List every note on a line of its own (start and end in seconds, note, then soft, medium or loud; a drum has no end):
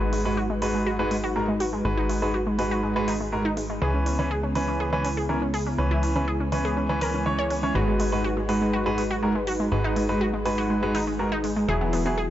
0.00 1.83 G#1 medium
0.00 0.22 G#2 medium
0.00 0.22 G#3 medium
0.00 11.65 G#3 medium
0.00 0.10 G#3 medium
0.00 3.78 D#4 medium
0.00 0.22 F#4 medium
0.00 3.78 F#4 medium
0.00 0.22 B4 medium
0.00 3.78 B4 medium
0.13 0.22 G#3 medium
0.13 open hi-hat medium
0.25 0.34 G#2 medium
0.25 0.34 G#3 medium
0.25 0.34 F#4 medium
0.25 0.34 B4 medium
0.37 0.47 F#4 medium
0.50 0.59 G#3 medium
0.62 0.96 G#2 medium
0.62 0.71 G#3 medium
0.62 0.96 G#3 medium
0.62 0.96 F#4 medium
0.62 0.96 B4 medium
0.62 open hi-hat medium
0.74 0.83 G#3 medium
0.86 0.96 F#4 medium
0.99 1.13 G#2 medium
0.99 1.08 G#3 medium
0.99 1.13 G#3 medium
0.99 1.13 F#4 medium
0.99 1.13 B4 loud
1.11 1.21 G#3 medium
1.11 open hi-hat medium
1.24 1.33 F#4 medium
1.36 1.45 G#2 medium
1.36 1.45 G#3 medium
1.36 1.45 F#4 medium
1.36 1.45 A#4 medium
1.48 1.57 G#3 medium
1.60 1.70 F#4 medium
1.60 open hi-hat medium
1.73 1.82 G#3 medium
1.85 3.79 G#1 medium
1.85 2.19 G#2 medium
1.85 1.94 G#3 medium
1.85 2.19 G#3 medium
1.85 2.19 F#4 medium
1.85 2.19 B4 medium
1.97 2.06 D#4 medium
2.09 2.19 G#3 medium
2.09 open hi-hat loud
2.22 2.31 G#2 medium
2.22 2.31 G#3 medium
2.22 2.31 F#4 medium
2.22 2.31 B4 medium
2.34 2.43 F#4 medium
2.47 2.56 G#3 medium
2.59 2.93 G#2 medium
2.59 2.68 G#3 medium
2.59 2.93 G#3 medium
2.59 2.93 F#4 medium
2.59 2.93 B4 medium
2.59 open hi-hat medium
2.71 2.80 F#4 medium
2.83 2.93 G#3 medium
2.96 3.10 G#2 medium
2.96 3.05 G#3 medium
2.96 3.10 G#3 medium
2.96 3.10 F#4 medium
2.96 3.10 B4 loud
3.08 3.17 D#4 medium
3.08 open hi-hat loud
3.20 3.29 G#3 medium
3.32 3.42 G#2 medium
3.32 3.42 G#3 medium
3.32 3.42 F#4 medium
3.32 3.42 A#4 medium
3.45 3.54 D#4 medium
3.57 3.66 G#3 medium
3.57 open hi-hat medium
3.70 3.79 G#3 medium
3.81 5.76 C#2 medium
3.81 7.71 C#3 medium
3.81 4.16 E3 medium
3.81 7.71 B3 medium
3.81 4.16 C#4 medium
3.81 7.71 E4 medium
3.81 3.91 G#4 loud
3.81 4.16 B4 medium
3.94 4.03 C#4 medium
4.06 4.16 C#4 medium
4.06 open hi-hat loud
4.19 4.28 E3 medium
4.19 4.28 C#4 medium
4.19 4.28 B4 medium
4.31 4.40 G#4 medium
4.43 4.52 C#4 medium
4.55 4.90 E3 medium
4.55 4.90 C#4 medium
4.55 4.65 C#4 medium
4.55 4.90 B4 medium
4.55 open hi-hat medium
4.68 4.77 C#4 medium
4.80 4.89 G#4 medium
4.93 5.07 E3 medium
4.93 5.02 C#4 medium
4.93 5.07 C#4 medium
4.93 5.07 B4 loud
5.05 5.14 C#4 medium
5.05 open hi-hat loud
5.17 5.26 G#4 medium
5.29 5.38 E3 medium
5.29 5.38 C#4 medium
5.29 5.39 C#4 medium
5.29 5.38 A#4 medium
5.42 5.51 C#4 medium
5.54 5.63 G#4 medium
5.54 open hi-hat medium
5.66 5.75 C#4 medium
5.78 7.73 C#2 medium
5.78 6.13 E3 medium
5.78 6.13 C#4 medium
5.78 5.88 C#4 medium
5.78 6.13 B4 medium
5.91 6.00 E4 medium
6.03 6.12 C#4 medium
6.03 open hi-hat loud
6.16 6.24 E3 medium
6.16 6.24 C#4 medium
6.16 6.25 C#4 medium
6.16 6.24 B4 medium
6.28 6.37 G#4 medium
6.40 6.49 C#4 medium
6.52 6.86 E3 medium
6.52 6.86 C#4 medium
6.52 6.62 C#4 medium
6.52 6.86 B4 medium
6.52 open hi-hat medium
6.65 6.74 G#4 medium
6.77 6.86 C#4 medium
6.89 6.99 E3 medium
6.89 6.99 C#4 medium
6.89 6.98 C#4 medium
6.89 6.99 B4 loud
7.01 7.23 E3 medium
7.01 7.23 C#4 medium
7.01 7.11 A#4 medium
7.01 7.23 B4 medium
7.01 open hi-hat loud
7.14 7.23 C#4 medium
7.26 7.60 E3 medium
7.26 7.60 C#4 medium
7.26 7.35 C#4 medium
7.26 7.60 C#5 medium
7.39 7.47 C#5 medium
7.51 7.60 C#4 medium
7.51 open hi-hat medium
7.63 7.72 E3 medium
7.63 7.72 C#4 medium
7.63 7.72 C#5 medium
7.75 9.69 G#1 medium
7.75 8.09 G#2 medium
7.75 8.09 G#3 medium
7.75 11.65 D#4 medium
7.75 8.09 F#4 medium
7.75 7.85 F#4 medium
7.75 9.70 F#4 medium
7.75 8.09 B4 medium
7.75 11.65 B4 medium
7.88 7.97 G#3 medium
8.00 8.09 G#3 medium
8.00 open hi-hat medium
8.12 8.21 G#2 medium
8.12 8.21 G#3 medium
8.12 8.21 F#4 medium
8.12 8.21 B4 medium
8.24 8.34 F#4 medium
8.37 8.46 G#3 medium
8.49 8.83 G#2 medium
8.49 8.83 G#3 medium
8.49 8.58 G#3 medium
8.49 8.83 F#4 medium
8.49 8.83 B4 medium
8.49 open hi-hat medium
8.61 8.70 G#3 medium
8.73 8.83 F#4 medium
8.86 9.00 G#2 medium
8.86 9.00 G#3 medium
8.86 8.95 G#3 medium
8.86 9.00 F#4 medium
8.86 9.00 B4 loud
8.98 9.07 G#3 medium
8.98 open hi-hat medium
9.11 9.20 F#4 medium
9.22 9.32 G#2 medium
9.22 9.32 G#3 medium
9.22 9.32 F#4 medium
9.22 9.32 A#4 medium
9.35 9.44 G#3 medium
9.47 9.57 F#4 medium
9.47 open hi-hat medium
9.60 9.69 G#3 medium
9.72 11.66 G#1 medium
9.72 10.06 G#2 medium
9.72 10.06 G#3 medium
9.72 9.81 G#3 medium
9.72 10.06 F#4 medium
9.72 12.30 G#4 medium
9.72 10.06 B4 medium
9.84 9.93 D#4 medium
9.96 10.06 G#3 medium
9.96 open hi-hat medium
10.09 10.18 G#2 medium
10.09 10.18 G#3 medium
10.09 10.18 F#4 medium
10.09 10.18 B4 medium
10.21 10.30 F#4 medium
10.33 10.42 G#3 medium
10.45 10.80 G#2 medium
10.45 10.80 G#3 medium
10.45 10.55 G#3 medium
10.45 10.80 F#4 medium
10.45 10.80 B4 medium
10.45 open hi-hat medium
10.58 10.67 F#4 medium
10.70 10.79 G#3 medium
10.83 10.97 G#2 medium
10.83 10.92 G#3 medium
10.83 10.97 G#3 medium
10.83 10.97 F#4 medium
10.83 10.97 B4 loud
10.95 11.04 D#4 medium
10.95 open hi-hat medium
11.07 11.16 G#3 medium
11.19 11.29 G#2 medium
11.19 11.29 G#3 medium
11.19 11.29 F#4 medium
11.19 11.29 A#4 medium
11.32 11.41 D#4 loud
11.44 11.53 G#3 medium
11.44 open hi-hat medium
11.56 11.65 G#3 medium
11.68 12.30 E1 medium
11.68 12.30 E3 medium
11.68 12.03 F#3 medium
11.68 12.03 E4 medium
11.68 12.30 E4 medium
11.68 12.30 F#4 medium
11.68 12.03 G#4 medium
11.68 11.78 G#4 loud
11.81 11.90 B3 medium
11.93 12.03 B3 medium
11.93 open hi-hat medium
12.06 12.14 F#3 medium
12.06 12.15 B3 medium
12.06 12.14 E4 medium
12.06 12.14 G#4 medium
12.18 12.27 G#4 medium